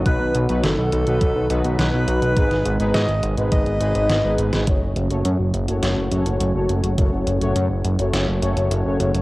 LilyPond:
<<
  \new Staff \with { instrumentName = "Alto saxophone" } { \time 4/4 \key fis \dorian \tempo 4 = 104 b'8 r8 a'2 b'4~ | b'4 dis''8 r8 dis''2 | r1 | r1 | }
  \new Staff \with { instrumentName = "Analog polysynth" } { \time 4/4 \key fis \dorian <fis b dis' fis' b'>8. <fis b dis' fis' b'>8 r8 <fis b dis' fis' b'>8. <fis b dis' fis' b'>8. <fis b dis' fis' b'>8. | <gis b dis' gis' b'>8. <gis b dis' gis' b'>8 r8 <gis b dis' gis' b'>8. <gis b dis' gis' b'>8. <gis b dis' gis' b'>8. | <a cis' fis' a' cis''>8. <a cis' fis' a' cis''>8 r8 <a cis' fis' a' cis''>8. <a cis' fis' a' cis''>8. <a cis' fis' a' cis''>8. | <a cis' fis' a' cis''>8. <a cis' fis' a' cis''>8 r8 <a cis' fis' a' cis''>8. <a cis' fis' a' cis''>8. <a cis' fis' a' cis''>8. | }
  \new Staff \with { instrumentName = "Analog synth pad" } { \clef bass \time 4/4 \key fis \dorian << { <dis fis fis'>1 | <dis gis gis'>1 | <cis fis fis'>1~ | <cis fis fis'>1 | } \\ { <b, dis'>1~ | <b, dis'>1 | <a, cis'>1~ | <a, cis'>1 | } >> }
  \new Staff \with { instrumentName = "Analog synth bass" } { \clef bass \time 4/4 \key fis \dorian b,,16 b,,16 b,,16 b,,16 fis,,16 b,,16 b,,16 b,,16 b,,16 b,,16 b,,16 b,,16 b,,16 b,,16 b,,16 b,,16 | r16 gis,,16 gis,,16 gis,,16 gis,16 gis,,16 gis,,16 gis,,16 gis,,16 gis,,16 gis,,16 gis,,16 gis,,16 gis,,16 gis,,16 gis,,16 | fis,,16 fis,,16 fis,,16 fis,,16 fis,16 fis,,16 fis,,16 fis,,16 fis,,16 fis,,16 fis,,16 fis,,16 fis,,16 fis,,16 fis,,16 fis,,16 | fis,,16 fis,,16 fis,,16 fis,,16 fis,16 fis,,16 fis,,16 fis,,16 fis,,16 fis,,16 fis,,16 fis,,16 fis,,16 fis,,16 fis,,16 fis,,16 | }
  \new DrumStaff \with { instrumentName = "Drums" } \drummode { \time 4/4 <hh bd>8 hh16 hh16 <hh sn>8 hh16 hh16 <hh bd>8 hh16 hh16 <hh sn>8 hh16 hh16 | <hh bd>16 <hh sn>16 hh16 hh16 <hh sn>16 hh16 hh16 hh16 <hh bd>16 hh16 hh16 hh16 <hh sn>8 hh16 <hh sn>16 | <hh bd>8 hh16 hh16 hh8 hh16 hh16 <hh sn>8 hh16 hh16 hh8 hh16 hh16 | <hh bd>8 hh16 hh16 hh8 hh16 hh16 <hh sn>8 hh16 hh16 hh8 hh16 hh16 | }
>>